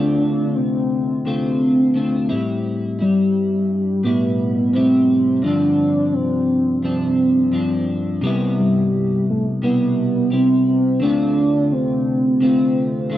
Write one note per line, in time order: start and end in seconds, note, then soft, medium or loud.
0.00 1.24 D3 medium
0.00 1.26 A3 medium
0.00 1.27 C4 medium
0.00 0.57 D4 loud
0.00 1.27 F4 loud
0.55 1.25 C4 loud
1.25 1.93 D3 medium
1.25 1.95 A3 medium
1.25 2.26 C4 loud
1.25 1.96 C4 medium
1.25 1.96 F4 medium
1.94 2.30 D3 medium
1.94 2.30 A3 medium
1.94 2.28 C4 medium
1.94 2.29 F4 medium
2.29 3.01 A2 medium
2.29 3.01 G3 medium
2.29 3.00 C4 medium
2.29 2.98 E4 medium
2.99 4.02 G3 loud
2.99 4.05 G3 soft
2.99 4.76 C4 soft
2.99 4.04 E4 soft
4.03 4.72 A2 medium
4.03 4.75 G3 medium
4.03 4.75 B3 loud
4.03 4.75 E4 medium
4.73 5.42 A2 medium
4.73 5.44 G3 medium
4.73 5.44 C4 loud
4.73 5.45 C4 medium
4.73 5.45 E4 medium
5.42 6.81 G2 medium
5.42 6.83 F3 medium
5.42 6.84 C4 medium
5.42 6.15 D4 loud
5.47 6.84 D4 medium
6.14 6.83 C4 loud
6.83 7.51 G2 medium
6.83 7.52 F3 medium
6.83 7.84 C4 loud
6.83 7.53 C4 medium
6.83 7.54 D4 medium
7.52 8.22 G2 medium
7.52 8.23 F3 medium
7.52 8.24 C4 medium
7.52 8.24 D4 medium
8.21 9.61 C3 medium
8.21 9.62 G3 loud
8.21 9.63 B3 loud
8.26 9.64 E4 loud
8.59 9.24 G3 loud
9.30 9.44 A3 medium
9.62 10.29 C3 medium
9.62 10.30 G3 medium
9.62 10.29 B3 loud
9.62 10.33 B3 medium
9.62 10.32 E4 medium
10.30 10.99 C3 medium
10.30 11.02 G3 medium
10.30 10.65 C4 loud
10.30 11.03 E4 medium
10.68 11.00 C4 loud
11.00 12.39 D3 medium
11.00 12.41 A3 medium
11.00 12.43 C4 medium
11.00 11.74 D4 loud
11.05 12.42 F4 medium
11.72 12.42 C4 loud
12.40 13.08 D3 medium
12.40 13.11 A3 medium
12.40 13.18 C4 loud
12.40 13.11 C4 medium
12.40 13.12 F4 medium
13.10 13.18 D3 medium
13.10 13.18 A3 medium
13.10 13.18 C4 medium
13.10 13.18 F4 medium